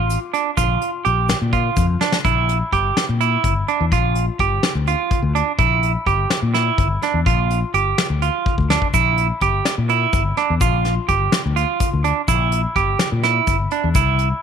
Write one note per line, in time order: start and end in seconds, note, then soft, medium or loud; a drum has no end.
0.00 0.16 A1 medium
0.00 0.18 F4 medium
0.10 closed hi-hat medium
0.10 shaker soft
0.33 0.50 D4 medium
0.33 closed hi-hat medium
0.57 0.76 A#1 loud
0.57 0.90 F4 medium
0.57 kick loud
0.57 closed hi-hat medium
0.57 shaker medium
0.81 closed hi-hat medium
0.81 shaker soft
1.05 1.33 A#1 medium
1.05 1.37 G4 medium
1.05 closed hi-hat medium
1.29 snare loud
1.29 closed hi-hat medium
1.29 shaker soft
1.41 1.68 A#2 medium
1.53 1.85 F4 medium
1.53 kick medium
1.53 closed hi-hat medium
1.77 1.95 F2 medium
1.77 kick loud
1.77 closed hi-hat medium
1.77 shaker medium
2.01 2.17 D4 medium
2.01 snare medium
2.12 snare medium
2.25 2.61 A#1 medium
2.25 2.57 E4 medium
2.25 kick loud
2.25 closed hi-hat medium
2.49 closed hi-hat medium
2.72 2.90 G1 medium
2.72 3.05 G4 medium
2.72 kick medium
2.72 closed hi-hat medium
2.97 snare medium
2.97 closed hi-hat medium
3.09 3.36 A#2 medium
3.20 3.53 E4 medium
3.20 closed hi-hat medium
3.44 3.62 G1 medium
3.44 kick medium
3.44 closed hi-hat medium
3.68 3.84 D4 medium
3.68 closed hi-hat medium
3.80 3.89 E2 medium
3.92 4.28 A#1 medium
3.92 4.25 F4 medium
3.92 kick loud
3.92 closed hi-hat medium
4.15 closed hi-hat medium
4.39 4.58 G1 medium
4.39 4.72 G4 medium
4.39 kick medium
4.39 closed hi-hat medium
4.63 snare loud
4.63 closed hi-hat medium
4.75 4.93 D2 medium
4.87 5.20 F4 medium
4.87 closed hi-hat medium
5.11 kick loud
5.11 closed hi-hat medium
5.22 5.41 D2 medium
5.35 5.51 D4 medium
5.35 closed hi-hat medium
5.59 5.95 A#1 medium
5.59 5.91 E4 medium
5.59 kick loud
5.59 closed hi-hat medium
5.83 closed hi-hat medium
6.06 6.25 G1 medium
6.06 6.39 G4 medium
6.06 kick medium
6.06 closed hi-hat medium
6.30 snare loud
6.30 closed hi-hat medium
6.42 6.70 A#2 medium
6.54 6.87 E4 medium
6.54 snare soft
6.54 closed hi-hat medium
6.78 6.96 G1 loud
6.78 kick loud
6.78 closed hi-hat medium
7.02 7.19 D4 medium
7.02 snare soft
7.02 closed hi-hat medium
7.14 7.23 E2 medium
7.26 7.62 A#1 loud
7.26 7.59 F4 medium
7.26 kick loud
7.26 closed hi-hat medium
7.51 closed hi-hat medium
7.74 7.92 G1 medium
7.74 8.07 G4 medium
7.74 closed hi-hat medium
7.98 snare loud
7.98 closed hi-hat medium
8.10 8.28 D2 medium
8.22 8.55 F4 medium
8.22 closed hi-hat medium
8.46 kick loud
8.58 8.76 D2 medium
8.58 kick medium
8.70 8.86 D4 medium
8.70 snare medium
8.82 kick medium
8.94 9.30 A#1 loud
8.94 9.26 E4 medium
8.94 kick loud
8.94 closed hi-hat medium
8.94 shaker medium
9.18 closed hi-hat medium
9.41 9.60 G1 loud
9.41 9.74 G4 medium
9.41 kick medium
9.41 closed hi-hat medium
9.65 snare loud
9.65 closed hi-hat medium
9.65 shaker soft
9.78 10.05 A#2 medium
9.89 10.22 E4 medium
9.89 closed hi-hat medium
10.13 10.31 G1 loud
10.13 kick loud
10.13 closed hi-hat medium
10.13 shaker soft
10.37 10.54 D4 medium
10.37 snare soft
10.37 closed hi-hat medium
10.50 10.59 E2 medium
10.61 10.97 A#1 loud
10.61 10.94 F4 medium
10.61 kick loud
10.61 closed hi-hat medium
10.61 shaker medium
10.85 snare soft
10.85 closed hi-hat medium
11.09 11.27 G1 medium
11.09 11.41 G4 medium
11.09 kick medium
11.09 closed hi-hat medium
11.32 snare loud
11.32 closed hi-hat medium
11.32 shaker soft
11.45 11.63 D2 medium
11.56 11.89 F4 medium
11.56 closed hi-hat medium
11.80 kick loud
11.80 closed hi-hat medium
11.80 shaker medium
11.93 12.11 D2 medium
12.04 12.21 D4 medium
12.04 closed hi-hat medium
12.28 12.64 A#1 loud
12.28 12.61 E4 medium
12.28 kick loud
12.28 closed hi-hat medium
12.28 shaker medium
12.52 closed hi-hat medium
12.76 12.94 G1 loud
12.76 13.08 G4 medium
12.76 kick medium
12.76 closed hi-hat medium
12.99 snare loud
12.99 closed hi-hat medium
12.99 shaker soft
13.12 13.39 A#2 medium
13.23 13.56 E4 medium
13.23 snare soft
13.23 closed hi-hat medium
13.47 13.66 G1 loud
13.47 kick medium
13.47 closed hi-hat medium
13.47 shaker soft
13.71 13.88 D4 medium
13.71 closed hi-hat medium
13.84 13.93 E2 medium
13.94 14.31 C2 medium
13.94 14.28 E4 medium
13.94 kick loud
13.94 closed hi-hat medium
13.94 shaker medium
14.19 closed hi-hat medium